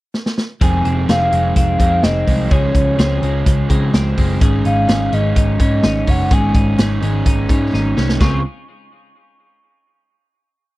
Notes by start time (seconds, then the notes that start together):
0.14 snare
0.26 snare
0.38 snare
0.61 F1 F2 C3 D#3 G#3 C4 G#4 G#5, kick, closed hi-hat
0.85 F1 C4, closed hi-hat
1.08 F1 C3 D#3 G#3 C4 G#4 F5, snare, closed hi-hat
1.31 F1 D#3 G#3 C4, closed hi-hat
1.56 F1 C4 F5, kick, closed hi-hat
1.79 F2 D#3 G#3 C4, kick, closed hi-hat
2.03 F1 C4 D#5, snare, closed hi-hat
2.27 C2 D#3 G#3 C4, kick, open hi-hat
2.50 C#2 C#3 F3 G#3 G#4 C#5, kick, closed hi-hat
2.75 C#2, kick, closed hi-hat
2.97 C#2 C#3 F3 G#3 C4 G#4, snare, closed hi-hat
3.23 C#2 F3 G#3, closed hi-hat
3.46 C#2, kick, closed hi-hat
3.69 C#3 F3 G#3 C4, kick, closed hi-hat
3.94 C#2 C4, snare, closed hi-hat
4.17 F#1 F3 G#3 C4, kick, open hi-hat
4.40 G#1 G#2 C#3 G#3 C#4 D#4 G#4, kick, closed hi-hat
4.65 G#1 D#4 F5, closed hi-hat
4.88 G#1 C#3 G#3 C#4 D#4 G#4, snare, closed hi-hat
5.12 G#1 G#3 C#4 D#4 D#5, closed hi-hat
5.36 G#1 D#4 D#5, kick, closed hi-hat
5.59 G#2 G#3 C#4 D#4, kick, closed hi-hat
5.83 G#1 D#4, snare, closed hi-hat
6.06 F#1 G#3 C#4 D#4 F#5, kick, open hi-hat
6.31 G#1 G#2 C#3 G#3 C#4 D#4 G#4 G#5, kick, closed hi-hat
6.55 G#1 D#4, kick, closed hi-hat
6.78 G#1 C#3 G#3 C#4 D#4 G#4, snare, closed hi-hat
7.01 G#1 G#3 C#4 D#4, closed hi-hat
7.26 G#1 D#4, kick, closed hi-hat
7.49 G#2 G#3 C#4 D#4, kick, closed hi-hat
7.73 G#1 D#4, snare
7.97 C2 G#3 C#4 D#4, snare
8.09 snare
8.20 C#2 C#3 G#3 C4 F4 G#4 C#6, kick, snare, crash